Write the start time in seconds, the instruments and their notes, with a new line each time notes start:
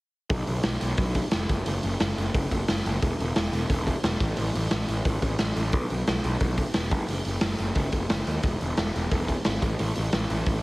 0.30 picked electric bass B1, kick, open hi-hat
0.47 picked electric bass B1, open hi-hat
0.63 picked electric bass B1, snare, open hi-hat
0.81 picked electric bass B1, open hi-hat
0.97 picked electric bass B1, kick, open hi-hat
1.15 kick, open hi-hat
1.31 picked electric bass F1, snare, open hi-hat
1.49 picked electric bass F#1, kick, open hi-hat
1.66 picked electric bass F#1, open hi-hat
1.83 picked electric bass F#1, open hi-hat
2.00 picked electric bass F#1, snare, open hi-hat
2.18 picked electric bass F#1, open hi-hat
2.34 picked electric bass F#1, kick, open hi-hat
2.51 picked electric bass F#1, kick, open hi-hat
2.68 picked electric bass F#1, snare, open hi-hat
2.86 picked electric bass F#1, open hi-hat
3.02 picked electric bass E1, kick, open hi-hat
3.20 picked electric bass E1, open hi-hat
3.36 picked electric bass E1, snare, open hi-hat
3.53 picked electric bass E1, open hi-hat
3.70 picked electric bass E1, kick, open hi-hat
3.87 kick, open hi-hat
4.04 picked electric bass E1, snare, open hi-hat
4.20 picked electric bass A1, kick, open hi-hat
4.37 picked electric bass A1, open hi-hat
4.55 picked electric bass A1, open hi-hat
4.71 picked electric bass A1, snare, open hi-hat
4.88 picked electric bass A1, open hi-hat
5.05 picked electric bass A1, kick, open hi-hat
5.22 picked electric bass A1, kick, open hi-hat
5.39 picked electric bass A1, snare, open hi-hat
5.56 picked electric bass A1, open hi-hat
5.72 picked electric bass B1, kick, open hi-hat
5.90 picked electric bass B1, open hi-hat
6.07 picked electric bass B1, snare, open hi-hat
6.24 picked electric bass B1, open hi-hat
6.40 picked electric bass B1, kick, open hi-hat
6.58 kick, open hi-hat
6.74 picked electric bass E1, snare, open hi-hat
6.91 picked electric bass F#1, kick, open hi-hat
7.08 picked electric bass F#1, open hi-hat
7.25 picked electric bass F#1, open hi-hat
7.41 picked electric bass F#1, snare, open hi-hat
7.58 picked electric bass F#1, open hi-hat
7.75 picked electric bass F#1, kick, open hi-hat
7.92 picked electric bass F#1, kick, open hi-hat
8.10 picked electric bass F#1, snare, open hi-hat
8.27 picked electric bass D#2, open hi-hat
8.43 picked electric bass E1, kick, open hi-hat
8.61 picked electric bass E1, open hi-hat
8.77 picked electric bass E1, snare, open hi-hat
8.96 picked electric bass E1, open hi-hat
9.11 picked electric bass E1, kick, open hi-hat
9.28 kick, open hi-hat
9.45 picked electric bass G#1, snare, open hi-hat
9.62 picked electric bass A1, kick, open hi-hat
9.79 picked electric bass A1, open hi-hat
9.95 picked electric bass A1, open hi-hat
10.12 picked electric bass A1, snare, open hi-hat
10.30 picked electric bass A1, open hi-hat
10.46 picked electric bass A1, kick, open hi-hat